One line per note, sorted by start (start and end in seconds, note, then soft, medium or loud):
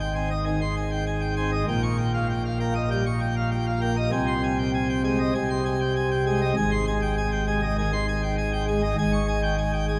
0.00 1.63 G#1 medium
0.00 1.63 G#2 medium
0.00 0.13 G5 medium
0.15 0.29 C4 medium
0.15 0.29 G#5 medium
0.31 0.44 D#5 medium
0.45 0.59 D#3 medium
0.45 0.59 G#5 medium
0.61 0.75 C6 medium
0.76 0.90 G#5 medium
0.91 1.04 G5 medium
1.06 1.20 G#5 medium
1.21 1.34 G5 medium
1.36 1.50 C4 medium
1.36 1.50 G#5 medium
1.52 1.65 D#5 medium
1.68 4.09 A#1 medium
1.68 4.09 A#2 medium
1.68 1.81 G5 medium
1.83 1.96 C#6 loud
1.98 2.12 G5 medium
2.14 2.27 F5 medium
2.30 2.43 G5 medium
2.45 2.58 F5 medium
2.60 2.74 A#3 medium
2.60 2.73 G5 medium
2.75 2.89 D#5 medium
2.90 3.04 G3 medium
2.90 3.04 G5 medium
3.06 3.19 C#6 medium
3.21 3.35 G5 medium
3.36 3.49 F5 medium
3.52 3.65 G5 medium
3.66 3.80 F5 medium
3.81 3.95 A#3 medium
3.81 3.95 G5 medium
3.97 4.10 D#5 medium
4.12 5.32 C2 medium
4.12 5.33 C3 medium
4.12 4.26 G#5 medium
4.27 4.41 C6 loud
4.43 4.57 G#5 medium
4.58 4.72 G5 medium
4.74 4.87 G#5 medium
4.89 5.02 G5 medium
5.04 5.18 G#3 medium
5.04 5.18 G#5 medium
5.19 5.33 D#5 medium
5.34 6.52 C2 medium
5.34 6.52 C3 medium
5.34 5.48 G#5 medium
5.50 5.64 C6 medium
5.65 5.79 G#5 medium
5.81 5.93 G5 medium
5.96 6.09 G#5 medium
6.11 6.24 G5 medium
6.26 6.40 G#3 medium
6.26 6.40 G#5 medium
6.42 6.54 D#5 medium
6.56 8.94 G#1 loud
6.56 8.94 G#2 loud
6.56 6.70 G#5 medium
6.72 6.85 C6 loud
6.87 7.00 G#5 medium
7.02 7.15 G5 medium
7.17 7.31 G#5 medium
7.32 7.45 G5 medium
7.47 7.61 G#3 medium
7.47 7.61 G#5 medium
7.62 7.76 D#5 medium
7.78 7.91 D#3 medium
7.78 7.91 G#5 medium
7.93 8.06 C6 medium
8.08 8.21 G#5 medium
8.23 8.36 G5 medium
8.38 8.51 G#5 medium
8.53 8.65 G5 medium
8.68 8.81 G#3 medium
8.68 8.81 G#5 medium
8.83 8.96 D#5 medium
8.98 9.99 G#1 loud
8.98 9.99 G#2 loud
8.98 9.11 G#5 medium
9.13 9.26 C#6 loud
9.28 9.41 G#5 medium
9.43 9.56 G5 medium
9.58 9.71 G#5 medium
9.73 9.86 G5 medium
9.88 9.99 G#3 medium
9.88 9.99 G#5 medium